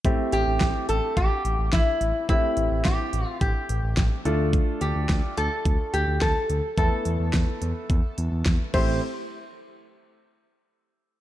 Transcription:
0.05 0.16 A1 loud
0.05 2.25 A3 medium
0.05 2.25 C4 medium
0.05 2.25 E4 medium
0.05 2.25 G4 medium
0.05 kick loud
0.05 closed hi-hat medium
0.32 0.44 A1 loud
0.32 0.88 G4 medium
0.32 closed hi-hat medium
0.47 0.58 A1 loud
0.60 0.72 A1 loud
0.60 kick loud
0.60 snare loud
0.60 closed hi-hat medium
0.89 1.00 A1 loud
0.89 1.18 A4 loud
0.89 closed hi-hat medium
1.17 1.28 A1 loud
1.17 1.69 G4 loud
1.17 kick loud
1.17 closed hi-hat medium
1.45 1.56 A1 medium
1.45 closed hi-hat medium
1.59 1.70 A1 medium
1.73 1.84 A1 loud
1.73 2.28 E4 medium
1.73 kick loud
1.73 snare loud
1.73 closed hi-hat medium
2.01 2.12 A1 medium
2.01 closed hi-hat medium
2.29 2.40 A1 loud
2.29 4.21 A3 medium
2.29 4.21 C4 medium
2.29 4.21 E4 medium
2.29 2.87 E4 medium
2.29 4.21 G4 medium
2.29 kick loud
2.29 closed hi-hat medium
2.57 2.68 A1 loud
2.57 closed hi-hat medium
2.71 2.82 A1 loud
2.85 2.97 A1 medium
2.85 3.26 G4 medium
2.85 kick loud
2.85 snare loud
2.85 closed hi-hat medium
3.13 3.24 A1 loud
3.13 closed hi-hat medium
3.26 3.37 F4 medium
3.41 3.52 A1 loud
3.41 4.21 G4 medium
3.41 kick loud
3.41 closed hi-hat medium
3.69 3.81 A1 loud
3.69 closed hi-hat medium
3.83 3.95 A1 medium
3.97 4.09 A1 loud
3.97 kick loud
3.97 snare loud
3.97 closed hi-hat medium
4.25 4.59 D2 medium
4.25 6.46 A3 medium
4.25 6.46 D4 medium
4.25 6.46 F4 medium
4.25 6.46 A4 medium
4.25 closed hi-hat medium
4.53 kick loud
4.53 closed hi-hat medium
4.81 4.93 D2 medium
4.81 5.37 G4 medium
4.81 closed hi-hat medium
4.95 5.07 D2 medium
5.09 5.21 D2 loud
5.09 kick medium
5.09 snare loud
5.09 closed hi-hat medium
5.37 5.49 D2 medium
5.37 5.95 A4 loud
5.37 closed hi-hat medium
5.65 5.77 D2 loud
5.65 kick loud
5.65 closed hi-hat medium
5.94 6.05 D2 loud
5.94 6.22 G4 medium
5.94 closed hi-hat medium
6.08 6.19 D2 medium
6.21 6.33 D2 loud
6.21 6.74 A4 loud
6.21 kick loud
6.21 snare loud
6.21 closed hi-hat medium
6.50 6.61 D2 loud
6.50 closed hi-hat medium
6.78 6.89 E2 loud
6.78 8.70 A3 medium
6.78 8.70 B3 medium
6.78 8.70 E4 medium
6.78 8.70 A4 medium
6.78 kick loud
6.78 closed hi-hat medium
7.05 7.17 E2 loud
7.05 closed hi-hat medium
7.20 7.31 E2 medium
7.33 7.45 E2 loud
7.33 kick loud
7.33 snare loud
7.33 closed hi-hat medium
7.62 7.73 E2 loud
7.62 closed hi-hat medium
7.90 8.01 E2 loud
7.90 kick loud
7.90 closed hi-hat medium
8.18 8.29 E2 loud
8.18 closed hi-hat medium
8.32 8.43 E2 loud
8.46 8.57 E2 loud
8.46 kick loud
8.46 snare loud
8.46 closed hi-hat medium
8.74 9.00 A1 medium
8.74 9.00 A3 medium
8.74 9.00 C4 medium
8.74 9.00 E4 medium
8.74 9.00 G4 medium
8.74 9.00 C5 medium
8.74 kick loud
8.74 crash medium

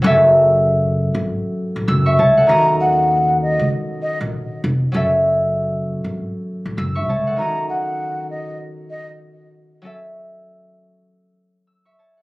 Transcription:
0.02 1.10 F#1 loud
0.02 2.54 F#3 medium
0.02 2.48 C#4 medium
0.02 2.24 A4 medium
0.06 1.85 E5 medium
1.15 1.24 G#1 medium
1.76 1.85 A1 medium
1.88 2.20 F#1 loud
1.88 2.53 E6 medium
2.06 2.53 E5 medium
2.06 3.32 C#6 medium
2.19 2.42 C#2 medium
2.19 4.11 C#5 medium
2.19 3.64 A5 medium
2.37 4.58 A4 medium
2.37 3.98 F#5 medium
2.47 3.55 D#2 loud
2.47 4.99 D#3 medium
2.47 4.93 C#4 medium
2.47 4.93 F#4 medium
2.47 2.76 A#5 loud
2.51 4.91 D#5 medium
2.80 3.37 F#5 medium
3.42 3.69 D#5 medium
3.59 3.69 C#2 medium
4.02 4.18 D#5 medium
4.21 4.30 A#1 medium
4.64 4.87 F1 medium
4.92 6.00 F#1 loud
4.92 7.44 F#3 medium
4.92 7.38 C#4 medium
4.92 7.14 A4 medium
4.96 6.75 E5 medium
6.04 6.13 G#1 medium
6.65 6.75 A1 medium
6.77 7.09 F#1 medium
6.77 7.42 E6 medium
6.95 7.42 E5 medium
6.95 8.22 C#6 medium
7.09 7.31 C#2 medium
7.09 9.01 C#5 medium
7.09 8.54 A5 medium
7.27 9.47 A4 medium
7.27 8.88 F#5 medium
7.36 9.89 D#3 medium
7.36 9.83 C#4 medium
7.36 9.83 F#4 medium
7.36 7.66 A#5 loud
7.41 9.81 D#5 medium
7.70 8.27 F#5 medium
8.30 8.58 D#5 medium
8.90 9.07 D#5 medium
9.82 12.22 F#3 medium
9.82 12.22 C#4 medium
9.82 12.04 A4 medium
9.86 11.65 E5 medium
11.67 12.22 E6 medium
11.85 12.22 E5 medium
11.85 12.22 C#6 medium
11.99 12.22 C#5 medium
11.99 12.22 A5 medium
12.17 12.22 A4 soft
12.17 12.22 F#5 medium

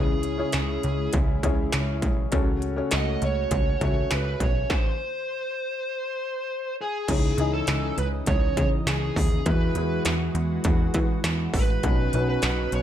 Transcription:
0.00 0.43 C#2 medium
0.00 0.80 C#3 medium
0.00 4.67 C#3 medium
0.00 2.30 G#3 medium
0.00 0.26 C#4 medium
0.00 0.27 E4 medium
0.00 2.30 E4 medium
0.00 0.27 G#4 medium
0.00 1.11 G#4 medium
0.00 0.27 C#5 medium
0.23 closed hi-hat medium
0.38 1.13 C#4 medium
0.38 1.13 E4 medium
0.38 1.13 G#4 medium
0.38 1.13 C#5 medium
0.52 0.78 C#2 medium
0.52 snare medium
0.52 closed hi-hat medium
0.83 1.09 C#2 medium
0.83 closed hi-hat medium
1.13 1.38 C#2 loud
1.13 kick medium
1.13 closed hi-hat medium
1.43 1.68 C#2 medium
1.43 2.07 C#4 medium
1.43 2.07 E4 medium
1.43 2.07 G#4 medium
1.43 2.07 C#5 medium
1.43 kick medium
1.43 closed hi-hat medium
1.72 2.04 C#2 medium
1.72 snare loud
1.72 closed hi-hat medium
2.02 2.27 B1 medium
2.02 kick medium
2.02 closed hi-hat medium
2.32 2.81 C#2 medium
2.32 3.18 C#3 medium
2.32 4.68 A3 medium
2.32 2.64 C#4 medium
2.32 2.64 F#4 medium
2.32 4.68 F#4 medium
2.32 2.64 A4 medium
2.32 2.65 C#5 medium
2.32 kick medium
2.32 closed hi-hat medium
2.62 closed hi-hat medium
2.76 3.51 C#4 medium
2.76 3.51 F#4 medium
2.76 3.51 A4 medium
2.76 3.51 C#5 medium
2.91 3.17 C#2 medium
2.91 3.24 D#5 medium
2.91 snare loud
2.91 closed hi-hat medium
3.22 3.46 C#2 medium
3.22 3.82 C#5 loud
3.22 closed hi-hat medium
3.51 3.76 C#2 medium
3.51 kick loud
3.51 closed hi-hat medium
3.81 4.06 C#2 loud
3.81 4.45 C#4 medium
3.81 4.45 F#4 medium
3.81 4.45 A4 medium
3.81 4.13 C#5 medium
3.81 4.45 E5 medium
3.81 kick medium
3.81 closed hi-hat medium
4.11 4.36 C#2 medium
4.11 4.43 B4 medium
4.11 snare loud
4.11 closed hi-hat medium
4.40 4.65 B1 medium
4.40 4.72 C#5 medium
4.40 kick medium
4.40 closed hi-hat medium
4.70 6.75 C5 medium
4.70 kick loud
4.70 snare medium
6.81 7.08 G#4 medium
7.08 7.33 C#2 medium
7.08 9.44 C#3 medium
7.08 7.94 C#3 medium
7.08 9.43 E3 medium
7.08 7.30 D#4 medium
7.08 7.30 E4 medium
7.08 7.50 G#4 medium
7.08 7.30 G#4 medium
7.08 7.31 C#5 medium
7.08 9.44 D#5 medium
7.08 kick loud
7.08 closed hi-hat medium
7.08 crash medium
7.38 7.62 C#2 medium
7.38 8.23 D#4 medium
7.38 8.23 E4 medium
7.38 8.23 D#5 medium
7.38 8.23 G#5 medium
7.38 closed hi-hat medium
7.54 7.95 A4 medium
7.67 7.92 C#2 loud
7.67 snare loud
7.67 closed hi-hat medium
7.98 8.22 C#2 medium
7.98 8.06 B4 medium
7.98 closed hi-hat medium
8.26 8.52 C#2 loud
8.26 8.55 C#5 loud
8.26 kick loud
8.26 closed hi-hat medium
8.57 8.82 C#3 loud
8.57 8.66 C#5 medium
8.57 kick medium
8.57 closed hi-hat medium
8.87 9.11 C#2 loud
8.87 9.48 G#4 medium
8.87 snare loud
8.87 closed hi-hat medium
9.16 9.41 D#2 medium
9.16 kick medium
9.16 open hi-hat medium
9.46 9.70 E2 loud
9.46 11.81 E3 medium
9.46 10.32 E3 medium
9.46 11.81 G#3 medium
9.46 9.68 E4 medium
9.46 11.81 F#4 loud
9.46 9.68 F#4 medium
9.46 9.68 G#4 medium
9.46 10.01 B4 medium
9.46 9.68 B4 medium
9.46 kick loud
9.46 closed hi-hat medium
9.75 10.00 E2 medium
9.75 10.60 E4 medium
9.75 10.60 F#4 medium
9.75 10.61 G#4 medium
9.75 10.61 B4 medium
9.75 closed hi-hat medium
10.05 10.30 E2 medium
10.05 snare medium
10.05 closed hi-hat medium
10.35 10.59 E2 medium
10.35 closed hi-hat medium
10.64 10.89 E2 loud
10.64 kick medium
10.64 closed hi-hat medium
10.94 11.19 E3 loud
10.94 kick medium
10.94 closed hi-hat medium
11.24 11.48 E2 medium
11.24 snare loud
11.24 closed hi-hat medium
11.54 11.78 A1 medium
11.54 12.28 B4 medium
11.54 kick medium
11.54 open hi-hat medium
11.83 12.08 B1 loud
11.83 12.69 B2 medium
11.83 12.82 C#3 medium
11.83 12.82 B3 medium
11.83 12.05 C#4 medium
11.83 12.05 D#4 medium
11.83 12.82 F#4 medium
11.83 12.05 F#4 medium
11.83 12.05 B4 medium
11.83 kick loud
11.83 closed hi-hat medium
12.13 12.38 B1 medium
12.13 12.82 C#4 medium
12.13 12.82 D#4 medium
12.13 12.82 F#4 medium
12.13 12.82 B4 medium
12.13 closed hi-hat medium
12.29 12.74 B4 loud
12.42 12.67 B1 loud
12.42 snare loud
12.42 closed hi-hat medium
12.72 12.82 B1 medium
12.72 12.82 C#5 loud
12.72 closed hi-hat medium

